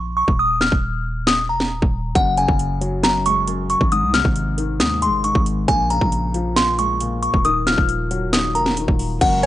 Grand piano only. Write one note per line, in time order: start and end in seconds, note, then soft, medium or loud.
2.15 3.02 F#2 medium
2.38 3.48 C#3 medium
2.81 3.92 F#3 medium
3.03 3.46 F#2 medium
3.27 3.92 G#3 medium
3.47 3.92 F#2 medium
3.92 4.78 G#2 loud
4.14 5.24 C3 medium
4.57 5.68 D#3 medium
4.80 5.23 G#2 medium
5.02 5.68 G#3 medium
5.24 5.68 G#2 medium
5.69 6.55 A#2 medium
5.91 7.01 C#3 medium
6.34 7.45 F3 medium
6.56 6.99 A#2 medium
6.78 7.45 G#3 medium
7.01 7.45 A#2 medium
7.45 8.31 D#3 loud
7.67 8.77 F3 medium
8.11 9.21 F#3 medium
8.33 8.76 D#3 medium
8.55 9.21 A#3 medium
8.78 9.22 D#3 medium
9.21 9.46 F#2 loud